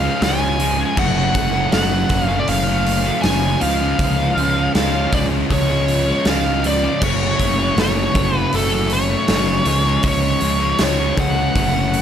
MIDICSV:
0, 0, Header, 1, 5, 480
1, 0, Start_track
1, 0, Key_signature, 3, "minor"
1, 0, Tempo, 755668
1, 622, Time_signature, 4, 2, 24, 8
1, 7634, End_track
2, 0, Start_track
2, 0, Title_t, "Lead electric guitar"
2, 0, Program_c, 0, 29
2, 0, Note_on_c, 0, 77, 108
2, 144, Note_off_c, 0, 77, 0
2, 149, Note_on_c, 0, 80, 105
2, 626, Note_off_c, 0, 80, 0
2, 628, Note_on_c, 0, 78, 103
2, 1093, Note_off_c, 0, 78, 0
2, 1101, Note_on_c, 0, 78, 103
2, 1412, Note_off_c, 0, 78, 0
2, 1412, Note_on_c, 0, 77, 103
2, 1522, Note_on_c, 0, 74, 73
2, 1549, Note_off_c, 0, 77, 0
2, 1573, Note_off_c, 0, 74, 0
2, 1580, Note_on_c, 0, 77, 102
2, 2043, Note_off_c, 0, 77, 0
2, 2046, Note_on_c, 0, 80, 115
2, 2294, Note_off_c, 0, 80, 0
2, 2297, Note_on_c, 0, 77, 95
2, 2992, Note_off_c, 0, 77, 0
2, 3025, Note_on_c, 0, 77, 94
2, 3264, Note_on_c, 0, 74, 95
2, 3269, Note_off_c, 0, 77, 0
2, 3328, Note_off_c, 0, 74, 0
2, 3512, Note_on_c, 0, 73, 95
2, 3999, Note_off_c, 0, 73, 0
2, 4000, Note_on_c, 0, 77, 94
2, 4213, Note_off_c, 0, 77, 0
2, 4237, Note_on_c, 0, 74, 92
2, 4465, Note_off_c, 0, 74, 0
2, 4467, Note_on_c, 0, 73, 104
2, 4950, Note_off_c, 0, 73, 0
2, 4957, Note_on_c, 0, 73, 92
2, 5313, Note_off_c, 0, 73, 0
2, 5313, Note_on_c, 0, 71, 92
2, 5433, Note_on_c, 0, 69, 92
2, 5442, Note_off_c, 0, 71, 0
2, 5671, Note_on_c, 0, 73, 106
2, 5673, Note_off_c, 0, 69, 0
2, 6394, Note_off_c, 0, 73, 0
2, 6402, Note_on_c, 0, 73, 88
2, 6873, Note_off_c, 0, 73, 0
2, 6881, Note_on_c, 0, 73, 80
2, 7114, Note_on_c, 0, 78, 77
2, 7118, Note_off_c, 0, 73, 0
2, 7634, Note_off_c, 0, 78, 0
2, 7634, End_track
3, 0, Start_track
3, 0, Title_t, "Distorted electric guitar"
3, 0, Program_c, 1, 30
3, 14, Note_on_c, 1, 61, 81
3, 25, Note_on_c, 1, 56, 73
3, 31, Note_on_c, 1, 53, 56
3, 130, Note_off_c, 1, 53, 0
3, 131, Note_on_c, 1, 49, 85
3, 136, Note_off_c, 1, 56, 0
3, 138, Note_on_c, 1, 53, 87
3, 144, Note_off_c, 1, 61, 0
3, 144, Note_on_c, 1, 56, 88
3, 146, Note_on_c, 1, 61, 104
3, 367, Note_off_c, 1, 49, 0
3, 375, Note_on_c, 1, 49, 72
3, 377, Note_off_c, 1, 53, 0
3, 382, Note_off_c, 1, 56, 0
3, 384, Note_on_c, 1, 53, 74
3, 390, Note_on_c, 1, 56, 78
3, 391, Note_off_c, 1, 61, 0
3, 394, Note_on_c, 1, 61, 75
3, 494, Note_off_c, 1, 61, 0
3, 497, Note_on_c, 1, 61, 74
3, 501, Note_off_c, 1, 56, 0
3, 509, Note_on_c, 1, 56, 66
3, 511, Note_off_c, 1, 53, 0
3, 518, Note_on_c, 1, 53, 62
3, 604, Note_off_c, 1, 49, 0
3, 611, Note_off_c, 1, 56, 0
3, 616, Note_off_c, 1, 53, 0
3, 618, Note_on_c, 1, 42, 80
3, 623, Note_on_c, 1, 49, 85
3, 628, Note_on_c, 1, 54, 107
3, 632, Note_on_c, 1, 57, 85
3, 634, Note_off_c, 1, 61, 0
3, 636, Note_on_c, 1, 61, 93
3, 844, Note_off_c, 1, 49, 0
3, 852, Note_on_c, 1, 49, 69
3, 853, Note_off_c, 1, 54, 0
3, 856, Note_off_c, 1, 57, 0
3, 861, Note_on_c, 1, 54, 76
3, 864, Note_on_c, 1, 57, 62
3, 869, Note_off_c, 1, 61, 0
3, 872, Note_on_c, 1, 61, 69
3, 974, Note_off_c, 1, 61, 0
3, 977, Note_on_c, 1, 61, 71
3, 979, Note_off_c, 1, 57, 0
3, 987, Note_on_c, 1, 57, 64
3, 990, Note_off_c, 1, 54, 0
3, 997, Note_on_c, 1, 54, 65
3, 1088, Note_off_c, 1, 42, 0
3, 1094, Note_off_c, 1, 49, 0
3, 1096, Note_on_c, 1, 42, 97
3, 1098, Note_off_c, 1, 54, 0
3, 1101, Note_on_c, 1, 49, 104
3, 1104, Note_off_c, 1, 57, 0
3, 1106, Note_on_c, 1, 54, 95
3, 1112, Note_on_c, 1, 57, 121
3, 1115, Note_off_c, 1, 61, 0
3, 1118, Note_on_c, 1, 61, 116
3, 1215, Note_off_c, 1, 61, 0
3, 1218, Note_on_c, 1, 61, 78
3, 1221, Note_off_c, 1, 57, 0
3, 1228, Note_off_c, 1, 54, 0
3, 1228, Note_on_c, 1, 57, 72
3, 1236, Note_on_c, 1, 54, 67
3, 1327, Note_off_c, 1, 49, 0
3, 1335, Note_on_c, 1, 49, 78
3, 1337, Note_off_c, 1, 54, 0
3, 1344, Note_off_c, 1, 57, 0
3, 1345, Note_on_c, 1, 54, 96
3, 1351, Note_on_c, 1, 57, 82
3, 1356, Note_off_c, 1, 61, 0
3, 1358, Note_on_c, 1, 61, 87
3, 1448, Note_off_c, 1, 61, 0
3, 1451, Note_on_c, 1, 61, 88
3, 1458, Note_off_c, 1, 42, 0
3, 1458, Note_off_c, 1, 57, 0
3, 1464, Note_off_c, 1, 54, 0
3, 1465, Note_on_c, 1, 57, 70
3, 1472, Note_on_c, 1, 54, 71
3, 1694, Note_off_c, 1, 61, 0
3, 1696, Note_on_c, 1, 61, 73
3, 1697, Note_off_c, 1, 49, 0
3, 1700, Note_off_c, 1, 57, 0
3, 1708, Note_off_c, 1, 54, 0
3, 1708, Note_on_c, 1, 57, 78
3, 1716, Note_on_c, 1, 54, 64
3, 1930, Note_off_c, 1, 61, 0
3, 1932, Note_on_c, 1, 61, 69
3, 1937, Note_off_c, 1, 57, 0
3, 1943, Note_off_c, 1, 54, 0
3, 1945, Note_on_c, 1, 57, 77
3, 1951, Note_on_c, 1, 54, 59
3, 2056, Note_on_c, 1, 42, 89
3, 2059, Note_off_c, 1, 54, 0
3, 2061, Note_on_c, 1, 49, 102
3, 2063, Note_off_c, 1, 57, 0
3, 2067, Note_on_c, 1, 54, 103
3, 2071, Note_on_c, 1, 57, 88
3, 2072, Note_off_c, 1, 61, 0
3, 2074, Note_on_c, 1, 61, 110
3, 2283, Note_off_c, 1, 42, 0
3, 2286, Note_off_c, 1, 49, 0
3, 2289, Note_off_c, 1, 54, 0
3, 2291, Note_off_c, 1, 57, 0
3, 2297, Note_on_c, 1, 49, 86
3, 2307, Note_on_c, 1, 53, 98
3, 2315, Note_on_c, 1, 56, 99
3, 2318, Note_off_c, 1, 61, 0
3, 2320, Note_on_c, 1, 61, 92
3, 2417, Note_off_c, 1, 61, 0
3, 2419, Note_on_c, 1, 61, 67
3, 2422, Note_off_c, 1, 56, 0
3, 2429, Note_on_c, 1, 56, 76
3, 2433, Note_off_c, 1, 53, 0
3, 2441, Note_on_c, 1, 53, 61
3, 2535, Note_off_c, 1, 49, 0
3, 2543, Note_on_c, 1, 49, 77
3, 2546, Note_off_c, 1, 53, 0
3, 2548, Note_off_c, 1, 56, 0
3, 2553, Note_on_c, 1, 53, 88
3, 2556, Note_on_c, 1, 56, 95
3, 2562, Note_off_c, 1, 61, 0
3, 2564, Note_on_c, 1, 61, 101
3, 2774, Note_off_c, 1, 49, 0
3, 2781, Note_off_c, 1, 53, 0
3, 2781, Note_on_c, 1, 49, 67
3, 2788, Note_off_c, 1, 56, 0
3, 2789, Note_on_c, 1, 53, 80
3, 2796, Note_on_c, 1, 56, 69
3, 2799, Note_off_c, 1, 61, 0
3, 2802, Note_on_c, 1, 61, 73
3, 2900, Note_off_c, 1, 61, 0
3, 2902, Note_on_c, 1, 61, 86
3, 2904, Note_off_c, 1, 56, 0
3, 2911, Note_on_c, 1, 56, 76
3, 2915, Note_off_c, 1, 53, 0
3, 2922, Note_on_c, 1, 53, 71
3, 3010, Note_off_c, 1, 49, 0
3, 3015, Note_off_c, 1, 53, 0
3, 3018, Note_on_c, 1, 49, 97
3, 3022, Note_on_c, 1, 53, 101
3, 3025, Note_off_c, 1, 56, 0
3, 3033, Note_off_c, 1, 61, 0
3, 3033, Note_on_c, 1, 56, 103
3, 3036, Note_on_c, 1, 61, 117
3, 3138, Note_off_c, 1, 61, 0
3, 3140, Note_off_c, 1, 56, 0
3, 3140, Note_on_c, 1, 61, 81
3, 3147, Note_on_c, 1, 56, 75
3, 3154, Note_off_c, 1, 53, 0
3, 3162, Note_on_c, 1, 53, 60
3, 3244, Note_off_c, 1, 49, 0
3, 3251, Note_on_c, 1, 49, 76
3, 3255, Note_off_c, 1, 53, 0
3, 3261, Note_off_c, 1, 56, 0
3, 3262, Note_on_c, 1, 53, 94
3, 3269, Note_on_c, 1, 56, 102
3, 3270, Note_off_c, 1, 61, 0
3, 3273, Note_on_c, 1, 61, 91
3, 3369, Note_off_c, 1, 61, 0
3, 3371, Note_on_c, 1, 61, 76
3, 3376, Note_off_c, 1, 56, 0
3, 3384, Note_on_c, 1, 56, 70
3, 3387, Note_off_c, 1, 53, 0
3, 3395, Note_on_c, 1, 53, 68
3, 3607, Note_off_c, 1, 61, 0
3, 3609, Note_on_c, 1, 61, 64
3, 3611, Note_off_c, 1, 56, 0
3, 3615, Note_off_c, 1, 49, 0
3, 3619, Note_on_c, 1, 56, 72
3, 3623, Note_off_c, 1, 53, 0
3, 3630, Note_on_c, 1, 53, 73
3, 3846, Note_off_c, 1, 61, 0
3, 3848, Note_on_c, 1, 61, 75
3, 3852, Note_off_c, 1, 56, 0
3, 3860, Note_on_c, 1, 56, 67
3, 3862, Note_off_c, 1, 53, 0
3, 3870, Note_on_c, 1, 53, 60
3, 3975, Note_on_c, 1, 49, 87
3, 3978, Note_off_c, 1, 53, 0
3, 3984, Note_off_c, 1, 56, 0
3, 3985, Note_on_c, 1, 53, 89
3, 3991, Note_off_c, 1, 61, 0
3, 3992, Note_on_c, 1, 56, 93
3, 3994, Note_on_c, 1, 61, 106
3, 4209, Note_off_c, 1, 49, 0
3, 4213, Note_off_c, 1, 53, 0
3, 4217, Note_on_c, 1, 49, 64
3, 4221, Note_off_c, 1, 56, 0
3, 4221, Note_on_c, 1, 53, 78
3, 4229, Note_on_c, 1, 56, 83
3, 4233, Note_off_c, 1, 61, 0
3, 4235, Note_on_c, 1, 61, 69
3, 4337, Note_off_c, 1, 61, 0
3, 4340, Note_on_c, 1, 61, 67
3, 4342, Note_off_c, 1, 56, 0
3, 4348, Note_off_c, 1, 53, 0
3, 4349, Note_on_c, 1, 56, 75
3, 4356, Note_on_c, 1, 53, 66
3, 4443, Note_off_c, 1, 49, 0
3, 4449, Note_off_c, 1, 56, 0
3, 4453, Note_off_c, 1, 53, 0
3, 4458, Note_on_c, 1, 42, 96
3, 4463, Note_on_c, 1, 49, 101
3, 4471, Note_on_c, 1, 54, 93
3, 4471, Note_on_c, 1, 57, 99
3, 4477, Note_off_c, 1, 61, 0
3, 4480, Note_on_c, 1, 61, 93
3, 4684, Note_off_c, 1, 49, 0
3, 4692, Note_on_c, 1, 49, 66
3, 4693, Note_off_c, 1, 54, 0
3, 4700, Note_off_c, 1, 57, 0
3, 4701, Note_on_c, 1, 54, 70
3, 4708, Note_on_c, 1, 57, 63
3, 4711, Note_off_c, 1, 61, 0
3, 4713, Note_on_c, 1, 61, 87
3, 4811, Note_off_c, 1, 61, 0
3, 4814, Note_on_c, 1, 61, 85
3, 4816, Note_off_c, 1, 57, 0
3, 4824, Note_off_c, 1, 54, 0
3, 4824, Note_on_c, 1, 57, 69
3, 4832, Note_on_c, 1, 54, 71
3, 4922, Note_off_c, 1, 42, 0
3, 4927, Note_off_c, 1, 49, 0
3, 4929, Note_on_c, 1, 42, 100
3, 4932, Note_off_c, 1, 54, 0
3, 4934, Note_off_c, 1, 57, 0
3, 4934, Note_on_c, 1, 49, 111
3, 4940, Note_on_c, 1, 54, 113
3, 4942, Note_on_c, 1, 57, 109
3, 4944, Note_off_c, 1, 61, 0
3, 4946, Note_on_c, 1, 61, 117
3, 5044, Note_off_c, 1, 61, 0
3, 5047, Note_on_c, 1, 61, 87
3, 5051, Note_off_c, 1, 57, 0
3, 5058, Note_off_c, 1, 54, 0
3, 5059, Note_on_c, 1, 57, 75
3, 5066, Note_on_c, 1, 54, 71
3, 5158, Note_off_c, 1, 49, 0
3, 5164, Note_off_c, 1, 54, 0
3, 5165, Note_on_c, 1, 49, 80
3, 5171, Note_off_c, 1, 57, 0
3, 5171, Note_on_c, 1, 54, 80
3, 5179, Note_on_c, 1, 57, 98
3, 5185, Note_off_c, 1, 61, 0
3, 5188, Note_on_c, 1, 61, 100
3, 5287, Note_off_c, 1, 61, 0
3, 5290, Note_on_c, 1, 61, 86
3, 5291, Note_off_c, 1, 57, 0
3, 5294, Note_off_c, 1, 42, 0
3, 5299, Note_on_c, 1, 57, 78
3, 5300, Note_off_c, 1, 54, 0
3, 5308, Note_on_c, 1, 54, 67
3, 5518, Note_off_c, 1, 61, 0
3, 5520, Note_on_c, 1, 61, 84
3, 5524, Note_off_c, 1, 57, 0
3, 5530, Note_off_c, 1, 54, 0
3, 5532, Note_off_c, 1, 49, 0
3, 5532, Note_on_c, 1, 57, 67
3, 5538, Note_on_c, 1, 54, 66
3, 5761, Note_off_c, 1, 61, 0
3, 5763, Note_on_c, 1, 61, 69
3, 5768, Note_off_c, 1, 57, 0
3, 5775, Note_on_c, 1, 57, 69
3, 5780, Note_off_c, 1, 54, 0
3, 5788, Note_on_c, 1, 54, 53
3, 5890, Note_on_c, 1, 42, 104
3, 5895, Note_off_c, 1, 54, 0
3, 5898, Note_off_c, 1, 57, 0
3, 5899, Note_on_c, 1, 49, 105
3, 5903, Note_on_c, 1, 54, 101
3, 5906, Note_on_c, 1, 57, 102
3, 5908, Note_off_c, 1, 61, 0
3, 5910, Note_on_c, 1, 61, 110
3, 6118, Note_off_c, 1, 49, 0
3, 6120, Note_off_c, 1, 42, 0
3, 6125, Note_on_c, 1, 49, 80
3, 6127, Note_off_c, 1, 54, 0
3, 6128, Note_off_c, 1, 57, 0
3, 6132, Note_on_c, 1, 53, 99
3, 6142, Note_on_c, 1, 56, 89
3, 6145, Note_off_c, 1, 61, 0
3, 6147, Note_on_c, 1, 61, 106
3, 6240, Note_off_c, 1, 61, 0
3, 6247, Note_on_c, 1, 61, 81
3, 6252, Note_off_c, 1, 56, 0
3, 6258, Note_off_c, 1, 53, 0
3, 6260, Note_on_c, 1, 56, 73
3, 6265, Note_on_c, 1, 53, 59
3, 6364, Note_off_c, 1, 49, 0
3, 6368, Note_off_c, 1, 53, 0
3, 6371, Note_on_c, 1, 49, 86
3, 6375, Note_off_c, 1, 56, 0
3, 6376, Note_on_c, 1, 53, 83
3, 6383, Note_off_c, 1, 61, 0
3, 6383, Note_on_c, 1, 56, 96
3, 6390, Note_on_c, 1, 61, 90
3, 6600, Note_off_c, 1, 49, 0
3, 6608, Note_off_c, 1, 53, 0
3, 6608, Note_on_c, 1, 49, 69
3, 6615, Note_off_c, 1, 56, 0
3, 6616, Note_on_c, 1, 53, 73
3, 6622, Note_off_c, 1, 61, 0
3, 6623, Note_on_c, 1, 56, 73
3, 6629, Note_on_c, 1, 61, 74
3, 6724, Note_off_c, 1, 61, 0
3, 6732, Note_on_c, 1, 61, 78
3, 6736, Note_off_c, 1, 56, 0
3, 6739, Note_off_c, 1, 53, 0
3, 6743, Note_on_c, 1, 56, 75
3, 6747, Note_on_c, 1, 53, 57
3, 6843, Note_off_c, 1, 49, 0
3, 6851, Note_on_c, 1, 49, 97
3, 6855, Note_off_c, 1, 53, 0
3, 6857, Note_off_c, 1, 56, 0
3, 6862, Note_on_c, 1, 53, 96
3, 6864, Note_off_c, 1, 61, 0
3, 6865, Note_on_c, 1, 56, 103
3, 6872, Note_on_c, 1, 61, 111
3, 6967, Note_off_c, 1, 61, 0
3, 6975, Note_on_c, 1, 61, 85
3, 6978, Note_off_c, 1, 56, 0
3, 6985, Note_on_c, 1, 56, 69
3, 6988, Note_off_c, 1, 53, 0
3, 6996, Note_on_c, 1, 53, 64
3, 7080, Note_off_c, 1, 49, 0
3, 7086, Note_off_c, 1, 53, 0
3, 7088, Note_on_c, 1, 49, 85
3, 7093, Note_on_c, 1, 53, 87
3, 7097, Note_off_c, 1, 56, 0
3, 7101, Note_off_c, 1, 61, 0
3, 7104, Note_on_c, 1, 56, 100
3, 7109, Note_on_c, 1, 61, 97
3, 7202, Note_off_c, 1, 61, 0
3, 7210, Note_on_c, 1, 61, 79
3, 7213, Note_off_c, 1, 56, 0
3, 7219, Note_off_c, 1, 53, 0
3, 7221, Note_on_c, 1, 56, 72
3, 7226, Note_on_c, 1, 53, 64
3, 7320, Note_off_c, 1, 49, 0
3, 7321, Note_off_c, 1, 61, 0
3, 7327, Note_off_c, 1, 56, 0
3, 7329, Note_off_c, 1, 53, 0
3, 7336, Note_on_c, 1, 42, 89
3, 7342, Note_on_c, 1, 49, 96
3, 7346, Note_on_c, 1, 54, 99
3, 7349, Note_on_c, 1, 57, 101
3, 7355, Note_on_c, 1, 61, 106
3, 7451, Note_off_c, 1, 61, 0
3, 7459, Note_on_c, 1, 61, 76
3, 7460, Note_off_c, 1, 57, 0
3, 7467, Note_on_c, 1, 57, 64
3, 7469, Note_off_c, 1, 54, 0
3, 7477, Note_on_c, 1, 54, 64
3, 7634, Note_off_c, 1, 42, 0
3, 7634, Note_off_c, 1, 49, 0
3, 7634, Note_off_c, 1, 54, 0
3, 7634, Note_off_c, 1, 57, 0
3, 7634, Note_off_c, 1, 61, 0
3, 7634, End_track
4, 0, Start_track
4, 0, Title_t, "Picked electric bass"
4, 0, Program_c, 2, 34
4, 139, Note_on_c, 2, 37, 94
4, 528, Note_off_c, 2, 37, 0
4, 619, Note_on_c, 2, 30, 108
4, 814, Note_off_c, 2, 30, 0
4, 854, Note_on_c, 2, 30, 89
4, 1051, Note_off_c, 2, 30, 0
4, 1099, Note_on_c, 2, 30, 92
4, 1294, Note_off_c, 2, 30, 0
4, 1334, Note_on_c, 2, 30, 88
4, 1530, Note_off_c, 2, 30, 0
4, 1579, Note_on_c, 2, 30, 100
4, 1967, Note_off_c, 2, 30, 0
4, 2062, Note_on_c, 2, 30, 94
4, 2255, Note_off_c, 2, 30, 0
4, 2301, Note_on_c, 2, 37, 98
4, 2494, Note_off_c, 2, 37, 0
4, 2533, Note_on_c, 2, 37, 98
4, 2730, Note_off_c, 2, 37, 0
4, 2774, Note_on_c, 2, 37, 92
4, 2970, Note_off_c, 2, 37, 0
4, 3019, Note_on_c, 2, 37, 94
4, 3213, Note_off_c, 2, 37, 0
4, 3257, Note_on_c, 2, 37, 83
4, 3452, Note_off_c, 2, 37, 0
4, 3494, Note_on_c, 2, 37, 108
4, 3884, Note_off_c, 2, 37, 0
4, 3977, Note_on_c, 2, 37, 102
4, 4365, Note_off_c, 2, 37, 0
4, 4457, Note_on_c, 2, 30, 97
4, 4652, Note_off_c, 2, 30, 0
4, 4698, Note_on_c, 2, 30, 93
4, 4892, Note_off_c, 2, 30, 0
4, 4933, Note_on_c, 2, 30, 98
4, 5129, Note_off_c, 2, 30, 0
4, 5173, Note_on_c, 2, 30, 94
4, 5369, Note_off_c, 2, 30, 0
4, 5424, Note_on_c, 2, 30, 95
4, 5810, Note_off_c, 2, 30, 0
4, 5905, Note_on_c, 2, 30, 106
4, 6096, Note_off_c, 2, 30, 0
4, 6133, Note_on_c, 2, 37, 81
4, 6329, Note_off_c, 2, 37, 0
4, 6375, Note_on_c, 2, 37, 103
4, 6571, Note_off_c, 2, 37, 0
4, 6619, Note_on_c, 2, 37, 85
4, 6813, Note_off_c, 2, 37, 0
4, 6859, Note_on_c, 2, 37, 84
4, 7054, Note_off_c, 2, 37, 0
4, 7097, Note_on_c, 2, 37, 85
4, 7293, Note_off_c, 2, 37, 0
4, 7339, Note_on_c, 2, 30, 99
4, 7634, Note_off_c, 2, 30, 0
4, 7634, End_track
5, 0, Start_track
5, 0, Title_t, "Drums"
5, 139, Note_on_c, 9, 46, 86
5, 142, Note_on_c, 9, 38, 109
5, 203, Note_off_c, 9, 46, 0
5, 205, Note_off_c, 9, 38, 0
5, 380, Note_on_c, 9, 46, 68
5, 443, Note_off_c, 9, 46, 0
5, 617, Note_on_c, 9, 49, 104
5, 618, Note_on_c, 9, 36, 117
5, 680, Note_off_c, 9, 49, 0
5, 682, Note_off_c, 9, 36, 0
5, 857, Note_on_c, 9, 36, 88
5, 857, Note_on_c, 9, 46, 61
5, 920, Note_off_c, 9, 46, 0
5, 921, Note_off_c, 9, 36, 0
5, 1095, Note_on_c, 9, 46, 82
5, 1097, Note_on_c, 9, 38, 127
5, 1158, Note_off_c, 9, 46, 0
5, 1161, Note_off_c, 9, 38, 0
5, 1331, Note_on_c, 9, 46, 71
5, 1334, Note_on_c, 9, 36, 93
5, 1394, Note_off_c, 9, 46, 0
5, 1398, Note_off_c, 9, 36, 0
5, 1574, Note_on_c, 9, 46, 85
5, 1637, Note_off_c, 9, 46, 0
5, 1820, Note_on_c, 9, 46, 72
5, 1884, Note_off_c, 9, 46, 0
5, 2055, Note_on_c, 9, 46, 95
5, 2057, Note_on_c, 9, 38, 127
5, 2118, Note_off_c, 9, 46, 0
5, 2121, Note_off_c, 9, 38, 0
5, 2295, Note_on_c, 9, 46, 63
5, 2358, Note_off_c, 9, 46, 0
5, 2535, Note_on_c, 9, 46, 90
5, 2536, Note_on_c, 9, 36, 120
5, 2599, Note_off_c, 9, 36, 0
5, 2599, Note_off_c, 9, 46, 0
5, 2780, Note_on_c, 9, 46, 57
5, 2843, Note_off_c, 9, 46, 0
5, 3017, Note_on_c, 9, 46, 93
5, 3019, Note_on_c, 9, 38, 120
5, 3080, Note_off_c, 9, 46, 0
5, 3083, Note_off_c, 9, 38, 0
5, 3256, Note_on_c, 9, 36, 99
5, 3256, Note_on_c, 9, 46, 74
5, 3320, Note_off_c, 9, 36, 0
5, 3320, Note_off_c, 9, 46, 0
5, 3497, Note_on_c, 9, 36, 82
5, 3498, Note_on_c, 9, 46, 77
5, 3560, Note_off_c, 9, 36, 0
5, 3562, Note_off_c, 9, 46, 0
5, 3737, Note_on_c, 9, 46, 55
5, 3800, Note_off_c, 9, 46, 0
5, 3972, Note_on_c, 9, 46, 90
5, 3974, Note_on_c, 9, 38, 127
5, 4035, Note_off_c, 9, 46, 0
5, 4038, Note_off_c, 9, 38, 0
5, 4219, Note_on_c, 9, 46, 64
5, 4282, Note_off_c, 9, 46, 0
5, 4457, Note_on_c, 9, 49, 111
5, 4458, Note_on_c, 9, 36, 115
5, 4521, Note_off_c, 9, 36, 0
5, 4521, Note_off_c, 9, 49, 0
5, 4698, Note_on_c, 9, 36, 86
5, 4702, Note_on_c, 9, 46, 70
5, 4761, Note_off_c, 9, 36, 0
5, 4766, Note_off_c, 9, 46, 0
5, 4940, Note_on_c, 9, 46, 85
5, 4943, Note_on_c, 9, 38, 121
5, 5004, Note_off_c, 9, 46, 0
5, 5006, Note_off_c, 9, 38, 0
5, 5178, Note_on_c, 9, 36, 97
5, 5182, Note_on_c, 9, 46, 64
5, 5241, Note_off_c, 9, 36, 0
5, 5245, Note_off_c, 9, 46, 0
5, 5417, Note_on_c, 9, 46, 82
5, 5480, Note_off_c, 9, 46, 0
5, 5652, Note_on_c, 9, 46, 66
5, 5716, Note_off_c, 9, 46, 0
5, 5895, Note_on_c, 9, 46, 96
5, 5897, Note_on_c, 9, 38, 125
5, 5958, Note_off_c, 9, 46, 0
5, 5961, Note_off_c, 9, 38, 0
5, 6133, Note_on_c, 9, 46, 67
5, 6196, Note_off_c, 9, 46, 0
5, 6371, Note_on_c, 9, 46, 88
5, 6376, Note_on_c, 9, 36, 114
5, 6434, Note_off_c, 9, 46, 0
5, 6439, Note_off_c, 9, 36, 0
5, 6611, Note_on_c, 9, 46, 67
5, 6674, Note_off_c, 9, 46, 0
5, 6852, Note_on_c, 9, 46, 97
5, 6854, Note_on_c, 9, 38, 127
5, 6915, Note_off_c, 9, 46, 0
5, 6918, Note_off_c, 9, 38, 0
5, 7098, Note_on_c, 9, 36, 97
5, 7098, Note_on_c, 9, 46, 64
5, 7161, Note_off_c, 9, 46, 0
5, 7162, Note_off_c, 9, 36, 0
5, 7339, Note_on_c, 9, 46, 85
5, 7340, Note_on_c, 9, 36, 98
5, 7403, Note_off_c, 9, 46, 0
5, 7404, Note_off_c, 9, 36, 0
5, 7582, Note_on_c, 9, 46, 63
5, 7634, Note_off_c, 9, 46, 0
5, 7634, End_track
0, 0, End_of_file